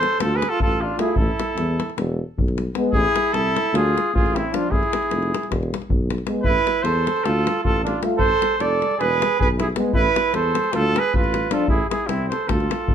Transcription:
Already playing: A4 C5
0.03 davul high
0.13 davul high
0.20 D2 F4 A4, davul high
0.35 G#4 B4
0.42 davul high
0.49 F4 A4
0.60 A1 F4 A4, davul low
0.72 davul high
0.81 D4 F4
0.98 A3 E4 F4 G#4, davul high
1.16 A1 E4 A4, davul low
1.40 davul high
1.57 E2, davul high
1.80 davul high
1.90 davul high
1.98 E1, davul high
2.38 B1, davul low
2.48 davul high
2.58 davul high
2.75 G#3 B3, davul high
2.92 A1 E4 G#4, davul low
3.16 davul high
3.33 C2 E4 A4, davul high
3.57 davul high
3.66 davul high
3.73 D2 F4 G#4, davul high
3.98 davul high
4.13 A1 F4 G#4, davul low
4.26 davul high
4.35 C4 E4, davul high
4.52 F3 D4 F4, davul high
4.69 A1 E4 G#4, davul low
4.83 davul high
4.93 davul high
5.03 davul high
5.10 F1, davul high
5.22 davul high
5.34 davul high
5.43 davul high
5.50 E1, davul high, davul low
5.63 davul high
5.74 davul high
5.82 davul high
5.90 B1, davul low
6.10 davul high
6.18 davul high
6.27 G#3 B3, davul high
6.43 A1 E4 B4, davul low
6.67 davul high
6.82 E2 A4 C5, davul high
7.07 davul high
7.16 davul high
7.24 D2 F4 A4, davul high
7.47 davul high
7.63 A1 F4 A4, davul low
7.77 davul high
7.84 D4 F4, davul high
8.02 A3 F4, davul high
8.18 A1 A4 C5, davul low
8.42 davul high
8.58 F1 A4 D5, davul high
8.82 davul high
8.91 davul high
8.98 E1 G#4 B4, davul high
9.22 davul high
9.39 B1 G#4 B4, davul low
9.50 davul high
9.58 E4 G#4, davul high
9.76 G#3 B3, davul high
9.93 A1 E4 B4, davul low
10.16 davul high
10.34 E2 A4 C5, davul high
10.55 davul high
10.64 davul high
10.73 D2 F4 A4, davul high
10.96 G#4 B4, davul high
11.14 A1 F4 B4, davul low
11.24 davul high
11.34 davul high
11.50 F3 D4 F4 A4, davul high
11.68 A1 E4 G#4, davul low
11.89 E4 G#4, davul high
12.07 C2 C4 E4, davul high
12.28 A4 C5, davul high
12.48 D2 F4 A4, davul high, davul low
12.60 davul high
12.71 davul high
12.87 A1, davul low

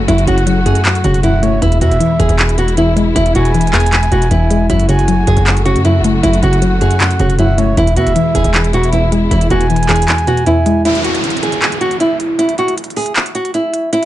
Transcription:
Already playing: C#3 F#3 A3 F#4
0.08 F#1 F#2 E4, closed hi-hat
0.18 closed hi-hat
0.27 F#1 C#3 F#4 F#5, closed hi-hat
0.38 closed hi-hat
0.47 F#3, closed hi-hat
0.66 F#2 G#4, closed hi-hat
0.75 closed hi-hat
0.85 F#2, clap, closed hi-hat
0.95 closed hi-hat
1.04 E1 C#3 F#4, closed hi-hat
1.14 closed hi-hat
1.23 F#2 E4 F#5, closed hi-hat
1.43 A3 C#5, closed hi-hat
1.62 E1 E2 B2 E3 G#3 E4, closed hi-hat
1.72 closed hi-hat
1.81 E2 B2 F#4 E5, closed hi-hat
1.91 E1, closed hi-hat
2.00 E3, closed hi-hat
2.19 E1 E2 G#4, closed hi-hat
2.29 E1, closed hi-hat
2.39 E2, clap, closed hi-hat
2.49 closed hi-hat
2.58 B2 F#4, closed hi-hat
2.68 closed hi-hat
2.77 E2 E4, closed hi-hat
2.96 G#3, closed hi-hat
3.16 E1 E2 E4, closed hi-hat
3.26 closed hi-hat
3.35 E1 B2 F#4 G#5, closed hi-hat
3.45 closed hi-hat
3.54 E3, closed hi-hat
3.61 closed hi-hat
3.67 closed hi-hat
3.73 E2 G#4, clap, closed hi-hat, open hi-hat
3.80 closed hi-hat
3.86 closed hi-hat
3.92 E2, clap, closed hi-hat
4.03 closed hi-hat
4.12 E1 B2 F#4, closed hi-hat
4.22 closed hi-hat
4.31 E1 E2 E4, closed hi-hat
4.50 G#3, closed hi-hat
4.70 F#1 F#2 C#3 F#3 A3 E4 F#4, closed hi-hat
4.80 closed hi-hat
4.89 C#3 F#4 G#5, closed hi-hat
4.99 closed hi-hat
5.08 F#3, closed hi-hat
5.27 F#1 F#2 G#4, closed hi-hat
5.37 F#1, closed hi-hat
5.46 F#2, clap, closed hi-hat
5.57 closed hi-hat
5.65 C#3 F#4, closed hi-hat
5.76 F#2, closed hi-hat
5.85 F#2 E4, closed hi-hat
6.00 F#1
6.04 A3, closed hi-hat
6.23 F#1 F#2 E4, closed hi-hat
6.33 closed hi-hat
6.43 F#1 C#3 F#4 F#5, closed hi-hat
6.53 closed hi-hat
6.62 F#3, closed hi-hat
6.81 F#2 G#4, closed hi-hat
6.91 closed hi-hat
7.00 F#2, clap, closed hi-hat
7.11 closed hi-hat
7.20 E1 C#3 F#4, closed hi-hat
7.30 closed hi-hat
7.39 F#2 E4 F#5, closed hi-hat
7.58 A3 C#5, closed hi-hat
7.77 E1 E2 B2 E3 G#3 E4, closed hi-hat
7.87 closed hi-hat
7.96 E2 B2 F#4 E5, closed hi-hat
8.06 E1, closed hi-hat
8.16 E3, closed hi-hat
8.35 E1 E2 G#4, closed hi-hat
8.44 E1, closed hi-hat
8.54 E2, clap, closed hi-hat
8.64 closed hi-hat
8.73 B2 F#4, closed hi-hat
8.83 closed hi-hat
8.93 E2 E4, closed hi-hat
9.12 G#3, closed hi-hat
9.31 E1 E2 E4, closed hi-hat
9.41 closed hi-hat
9.50 E1 B2 F#4 G#5, closed hi-hat
9.61 closed hi-hat
9.70 E3, closed hi-hat
9.76 closed hi-hat
9.83 closed hi-hat
9.89 E2 G#4, clap, closed hi-hat, open hi-hat
9.96 closed hi-hat
10.02 closed hi-hat
10.08 E2, clap, closed hi-hat
10.18 closed hi-hat
10.27 B2 F#4, closed hi-hat
10.37 closed hi-hat
10.46 E2 E4, closed hi-hat
10.66 G#3, closed hi-hat
10.85 E4, closed hi-hat, downlifter
10.95 closed hi-hat
11.04 F#4, closed hi-hat
11.15 closed hi-hat
11.24 closed hi-hat
11.30 closed hi-hat
11.37 closed hi-hat
11.43 G#4, closed hi-hat
11.52 closed hi-hat
11.62 clap, closed hi-hat
11.72 closed hi-hat
11.81 F#4, closed hi-hat
11.91 closed hi-hat
12.00 E4, closed hi-hat
12.20 closed hi-hat
12.39 E4, closed hi-hat
12.49 closed hi-hat
12.58 F#4, closed hi-hat
12.68 closed hi-hat
12.78 closed hi-hat
12.84 closed hi-hat
12.90 closed hi-hat
12.96 G#4, open hi-hat
13.06 closed hi-hat
13.16 clap, closed hi-hat
13.26 closed hi-hat
13.35 F#4, closed hi-hat
13.45 closed hi-hat
13.54 E4, closed hi-hat
13.74 closed hi-hat
13.93 E4, closed hi-hat

